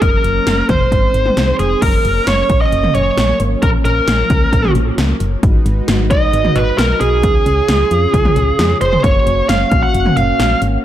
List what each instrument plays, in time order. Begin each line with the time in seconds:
0.02 fm bass F#1, analog synth pad F#3 A#3 C#4, lead electric guitar A#4, kick, closed hi-hat
0.24 fm bass F#1, closed hi-hat
0.47 fm bass F#1, snare, closed hi-hat
0.69 fm bass F#1, lead electric guitar C5, kick, closed hi-hat, mid tom
0.92 fm bass G#1, analog synth pad D#3 G#3 C4, kick, closed hi-hat
1.14 fm bass G#1, closed hi-hat
1.26 mid tom
1.37 fm bass C2, snare, closed hi-hat
1.59 fm bass F1, lead electric guitar G#4, closed hi-hat
1.82 fm bass F#1, analog synth pad F#3 A#3 C#4, lead electric guitar A#4, kick, closed hi-hat, crash
2.05 fm bass F#1, closed hi-hat
2.27 fm bass F#1, lead electric guitar C#5, snare, closed hi-hat
2.50 fm bass A#1, kick, closed hi-hat
2.61 lead electric guitar D#5
2.72 fm bass F#1, closed hi-hat
2.84 mid tom
2.95 fm bass F#1, lead electric guitar C#5, closed hi-hat
3.17 fm bass A#1, snare, closed hi-hat
3.40 fm bass G#1, closed hi-hat
3.62 fm bass A#1, analog synth pad F3, lead electric guitar A#4, kick, closed hi-hat
3.85 fm bass A#1, lead electric guitar A#4, closed hi-hat
4.08 fm bass A#1, snare, closed hi-hat
4.30 fm bass C#2, kick, closed hi-hat
4.53 fm bass A#1, kick, closed hi-hat
4.64 mid tom
4.75 fm bass A#1, closed hi-hat
4.98 fm bass C#2, snare, closed hi-hat
5.20 fm bass F#1, closed hi-hat
5.43 fm bass G#1, analog synth pad G#3 D#4 F#4 B4, kick, closed hi-hat
5.66 fm bass G#1, closed hi-hat
5.88 fm bass G#1, snare, closed hi-hat
6.11 fm bass B1, lead electric guitar D#5, kick, closed hi-hat
6.33 fm bass G#1, closed hi-hat
6.45 mid tom
6.56 fm bass G#1, lead electric guitar B4, closed hi-hat
6.78 fm bass B1, lead electric guitar A#4, snare, closed hi-hat
7.01 fm bass B1, lead electric guitar G#4, closed hi-hat
7.23 fm bass C#2, analog synth pad C#3 C#4 F4 G#4, kick, closed hi-hat
7.46 fm bass C#2, closed hi-hat
7.68 fm bass C#2, snare, closed hi-hat
7.91 fm bass F2, closed hi-hat
8.14 fm bass C#2, kick, closed hi-hat
8.25 mid tom
8.36 fm bass C#2, closed hi-hat
8.59 fm bass F2, snare, closed hi-hat
8.81 fm bass F1, lead electric guitar C5, closed hi-hat
8.93 mid tom
9.04 fm bass F#1, analog synth pad A#3 F#4, lead electric guitar C#5, kick, closed hi-hat
9.27 fm bass F#1, closed hi-hat
9.49 fm bass F#1, lead electric guitar F5, snare, closed hi-hat
9.72 fm bass A#1, kick, closed hi-hat
9.83 lead electric guitar F#5
9.94 fm bass F#1, closed hi-hat
10.06 mid tom
10.17 fm bass F#1, lead electric guitar F5, closed hi-hat
10.39 fm bass A#1, snare, closed hi-hat
10.62 fm bass G#1, closed hi-hat